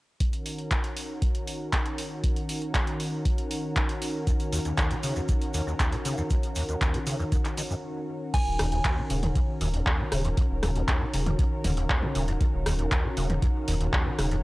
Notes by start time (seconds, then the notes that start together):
0.20 D#3 C#4 F#4 A#4, kick, closed hi-hat
0.33 closed hi-hat
0.46 open hi-hat
0.58 closed hi-hat
0.71 kick, clap, closed hi-hat
0.84 closed hi-hat
0.97 open hi-hat
1.22 kick, closed hi-hat
1.35 closed hi-hat
1.47 open hi-hat
1.73 kick, clap, closed hi-hat
1.86 closed hi-hat
1.98 open hi-hat
2.24 kick, closed hi-hat
2.36 closed hi-hat
2.49 open hi-hat
2.62 closed hi-hat
2.75 kick, clap, closed hi-hat
2.87 closed hi-hat
3.00 open hi-hat
3.25 kick, closed hi-hat
3.38 closed hi-hat
3.51 open hi-hat
3.76 kick, clap, closed hi-hat
3.89 closed hi-hat
4.02 open hi-hat
4.27 D#2, kick, closed hi-hat, shaker
4.40 closed hi-hat, shaker
4.52 D#2, open hi-hat, shaker
4.65 D#2, closed hi-hat, shaker
4.78 D#2, kick, clap, closed hi-hat, shaker
4.91 D#3, closed hi-hat, shaker
5.03 C#3, open hi-hat, shaker
5.16 E2, shaker
5.28 D#2, kick, closed hi-hat, shaker
5.41 closed hi-hat, shaker
5.54 D#2, open hi-hat, shaker
5.67 D#2, shaker
5.80 D#2, kick, clap, closed hi-hat, shaker
5.92 D#3, closed hi-hat, shaker
6.05 C#3, open hi-hat, shaker
6.17 E2, shaker
6.30 D#2, kick, closed hi-hat, shaker
6.43 closed hi-hat, shaker
6.55 D#2, open hi-hat, shaker
6.69 D#2, closed hi-hat, shaker
6.81 D#2, kick, clap, closed hi-hat, shaker
6.94 D#3, closed hi-hat, shaker
7.06 C#3, open hi-hat, shaker
7.19 E2, shaker
7.32 D#2, kick, closed hi-hat, shaker
7.45 clap, closed hi-hat, shaker
7.58 D#3, open hi-hat, shaker
7.70 F#2, shaker
8.34 D#2 D#3 C#4 F#4 A#4 G#5, kick, closed hi-hat, crash
8.47 D#1
8.59 D#1 D#2, cross-stick, open hi-hat
8.72 D#2, closed hi-hat
8.85 D#2, kick, clap, closed hi-hat
8.98 D#3
9.10 D#1 C#3, open hi-hat
9.23 E2, closed hi-hat, mid tom
9.36 D#2, kick, closed hi-hat
9.61 D#1 D#2, open hi-hat
9.74 D#2, closed hi-hat
9.86 D#2, kick, clap
9.99 D#3
10.12 D#1 C#3, cross-stick, open hi-hat
10.25 E2, closed hi-hat
10.37 D#2, kick, closed hi-hat
10.50 D#1
10.63 D#1 D#2, cross-stick, open hi-hat, mid tom
10.75 D#2, closed hi-hat
10.88 D#2, kick, clap, closed hi-hat
11.01 D#3
11.13 D#1 C#3, open hi-hat
11.26 E2, closed hi-hat, mid tom
11.39 D#2, kick, closed hi-hat
11.64 D#1 D#2, open hi-hat, mid tom
11.77 D#2, closed hi-hat
11.90 D#2, kick, clap
12.03 D#3, mid tom
12.15 D#1 C#3, open hi-hat
12.28 E2, closed hi-hat
12.41 D#2, kick, closed hi-hat
12.53 D#1
12.66 D#1 D#2, cross-stick, open hi-hat
12.79 D#2, closed hi-hat
12.91 D#2, kick, clap, closed hi-hat
13.04 D#3
13.17 D#1 C#3, open hi-hat
13.30 E2, closed hi-hat, mid tom
13.42 D#2, kick, closed hi-hat
13.68 D#1 D#2, open hi-hat
13.80 D#2, closed hi-hat
13.93 D#2, kick, clap
14.06 D#3
14.19 D#1 C#3, cross-stick, open hi-hat
14.31 E2, closed hi-hat